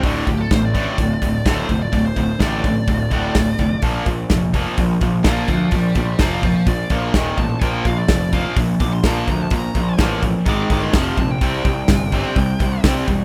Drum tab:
HH |oooooooo|oooooooo|oooooooo|oooooooo|
SD |--o---o-|--o---o-|--o---o-|--o---o-|
BD |oooooooo|oooooooo|oooooooo|oooooooo|

HH |oooooooo|oooooooo|oooooooo|
SD |--o---o-|--o---o-|--o---o-|
BD |oooooooo|oooooooo|oooooooo|